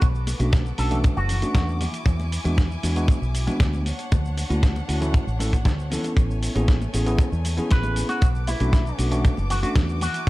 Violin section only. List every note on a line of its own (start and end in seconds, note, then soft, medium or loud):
0.01 1.79 B3 medium
0.01 1.79 A4 medium
0.01 3.82 D6 medium
1.81 3.84 E4 medium
1.81 3.84 G#5 medium
3.86 6.15 D4 medium
3.86 8.18 C#5 medium
3.86 6.14 F#5 medium
6.16 8.20 A3 medium
6.16 8.20 G#5 medium
8.22 10.00 B3 medium
8.22 10.00 A4 medium
8.22 10.30 D6 medium
10.01 10.30 E4 medium
10.01 10.30 G#5 medium